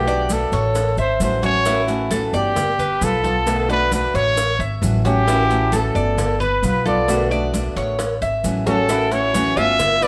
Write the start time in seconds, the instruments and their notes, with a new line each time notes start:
Already playing: upright bass B1, trumpet G4
0.07 nylon-string guitar D3 A3 B3 F#4, cuban tres D5, high conga, maracas
0.29 nylon-string guitar D3 A3 B3 F#4, cowbell, high conga, maracas
0.33 trumpet A4
0.52 upright bass A1, cuban tres C#5, cowbell, high conga, maracas
0.75 muted nylon-string guitar stroke, cowbell, high conga, maracas
0.97 upright bass G#1, trumpet C5, cuban tres E5, high conga, maracas
1.20 upright bass A1, nylon-string guitar E3 A3 C#4 F#4, trumpet C5, cowbell, high conga, maracas
1.42 nylon-string guitar A3 C#4 F#4, cuban tres C#5, trumpet C#5, cowbell, high conga, maracas
1.65 nylon-string guitar E3 A3 C#4 F#4, cuban tres E4, cowbell, high conga, maracas
1.87 nylon-string guitar A3 C#4 F#4, cowbell, high conga, maracas
2.11 nylon-string guitar E3 A3 C#4 F#4, cuban tres A4, cowbell, high conga, maracas
2.33 upright bass G1, trumpet G4, cuban tres D5, maracas
2.56 muted nylon-string guitar stroke, cowbell, high conga, low conga, maracas
2.79 cuban tres B4, high conga, low conga, maracas
3.01 upright bass B1, nylon-string guitar G3 B3 F4, trumpet A4, cowbell, high conga, maracas
3.23 nylon-string guitar B3 F4, cuban tres A4, high conga, maracas
3.46 nylon-string guitar B2 D3 A3 B3 F#4, cowbell, high conga, maracas
3.69 nylon-string guitar D3 A3 B3 F#4, trumpet B4, cuban tres D5, high conga, maracas
3.91 nylon-string guitar D3 A3 B3 F#4, trumpet B4, cowbell, high conga, maracas
4.14 upright bass A1, cuban tres C#5, trumpet C#5, cowbell, high conga, maracas
4.37 muted nylon-string guitar stroke, cowbell, high conga, maracas
4.59 upright bass G#1, cuban tres E5, high conga, maracas
4.82 upright bass A1, nylon-string guitar E3 A3 C#4 F#4, cowbell, high conga, maracas
5.04 nylon-string guitar A3 C#4 F#4, trumpet G4, cuban tres C#5, cowbell, high conga, maracas
5.26 nylon-string guitar E3 A3 C#4 F#4, cuban tres E4, cowbell, high conga, maracas
5.50 nylon-string guitar A3 C#4 F#4, cowbell, high conga, maracas
5.72 nylon-string guitar E3 A3 C#4 F#4, cuban tres A4, trumpet A4, cowbell, high conga, maracas
5.95 upright bass G1, cuban tres D5, maracas
6.18 muted nylon-string guitar stroke, cowbell, high conga, low conga, maracas
6.40 cuban tres B4, trumpet B4, high conga, low conga, maracas
6.62 upright bass B1, nylon-string guitar G3 B3 F4, trumpet B4, cowbell, high conga, maracas
6.85 nylon-string guitar B3 F4, cuban tres A4, trumpet D5, high conga, maracas
7.08 nylon-string guitar B2 D3 A3 B3 F#4, cowbell, high conga, maracas
7.30 nylon-string guitar D3 A3 B3 F#4, cuban tres D5, high conga, maracas
7.53 nylon-string guitar D3 A3 B3 F#4, cowbell, high conga, maracas
7.76 upright bass A1, cuban tres C#5, cowbell, high conga, maracas
7.99 muted nylon-string guitar stroke, cowbell, high conga, maracas
8.21 upright bass G#1, cuban tres E5, high conga, maracas
8.43 upright bass A1, nylon-string guitar E3 A3 C#4 F#4, cowbell, high conga, maracas
8.66 nylon-string guitar A3 C#4 F#4, trumpet A4, cuban tres C#5, cowbell, high bongo, high conga, maracas
8.88 nylon-string guitar E3 A3 C#4 F#4, cuban tres E4, cowbell, high conga, maracas
9.11 nylon-string guitar A3 C#4 F#4, trumpet C#5, cowbell, high conga, maracas
9.34 nylon-string guitar E3 A3 C#4 F#4, cuban tres C#5, cowbell, high conga, maracas
9.56 upright bass G1, nylon-string guitar A3 C#4 F#4, cuban tres F4, trumpet E5, maracas
9.79 muted nylon-string guitar stroke, cowbell, high conga, low conga, maracas
10.01 nylon-string guitar B3 F4, cuban tres B4, trumpet D5, high conga, maracas